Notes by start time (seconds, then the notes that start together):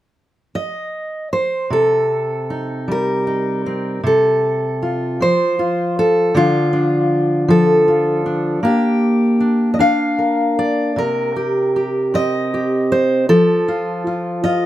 0.55 D#5
1.33 C5
1.70 C3 A4
2.50 D#4
2.88 G3 A#4
3.27 D#4
3.66 C4
4.04 C3 A4
4.83 F4
5.20 F3 C5
5.59 F4
5.99 A4
6.34 D3 F3 D4 F4
6.73 D4
7.48 F3 A4
7.88 F4
8.26 D4
8.63 A#3 D4 G4
9.40 D4
9.74 D#5
9.79 D4 F5
10.19 A#4
10.59 D5
10.96 C3 A#4
11.36 G4
11.76 G4
12.14 C4 D#5
12.54 G4
12.92 C5
13.29 F3 A4
13.68 F4
14.07 F4
14.44 F4 D#5